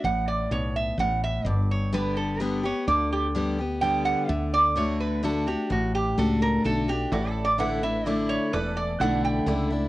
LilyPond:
<<
  \new Staff \with { instrumentName = "Resonator guitar played with a steel bar" } { \time 3/4 \key d \major \tempo 4 = 127 fis''8 d''8 cis''8 e''8 fis''8 e''8 | d''8 cis''8 b'8 a'8 b'8 cis''8 | d''8 g'8 r4 g''8 fis''8 | e''8 d''8 cis''8 b'8 a'8 g'8 |
fis'8 g'8 a'8 bes'8 a'8 g'8 | \tuplet 3/2 { fis'8 a'8 d''8 } fis''8 e''8 d''8 cis''8 | b'8 d''8 fis''8 g''4 r8 | }
  \new Staff \with { instrumentName = "Honky-tonk piano" } { \time 3/4 \key d \major r2. | r2. | r2. | r2. |
r2. | <e' a' d''>8. r16 <e' a' b'>8. r16 <e' a' d''>8. r16 | <e' a' d''>8. r16 <e' a' d''>8. r16 <e' a' d''>8. r16 | }
  \new Staff \with { instrumentName = "Steel-string acoustic guitar" } { \time 3/4 \key d \major << { r2. | r4 <d g b g'>4 <d g b g'>8 <b g'>8 | r4 <d g b g'>8 <b g'>8 <d g b g'>4 | r4 <d a d' fis'>4 <d a d' fis'>8 <d' fis'>8 |
r4 <a d' fis'>4 <d a d' fis'>8 <d' fis'>8 | r4 <d a d' e'>8 <d' e'>8 <d a d' e'>4 | r4 <d a d' e'>4 <d a d' e'>8 <d' e'>8 | } \\ { a,4 b,4 a,4 | g,2 r4 | d2 r4 | d2 r4 |
a,2 r4 | a,2 r4 | r2. | } >> }
  \new Staff \with { instrumentName = "Fretless electric bass" } { \clef bass \time 3/4 \key d \major a,,4 b,,4 a,,4 | g,,2. | d,2. | d,2. |
a,,4 cis,4 b,,4 | a,,2. | e,,4 b,,4 cis,4 | }
>>